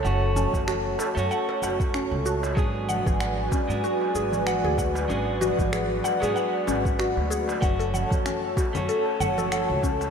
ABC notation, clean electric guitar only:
X:1
M:4/4
L:1/16
Q:"Swing 16ths" 1/4=95
K:F#m
V:1 name="Clean electric guitar"
[A,CF]6- [A,CF] [A,CF]8- [A,CF] | [F,G,B,DG]6- [F,G,B,DG] [F,G,B,DG]8- [F,G,B,DG] | [F,G,B,DG]6- [F,G,B,DG] [F,G,B,DG]8- [F,G,B,DG] | [A,CF]6- [A,CF] [A,CF]8- [A,CF] |]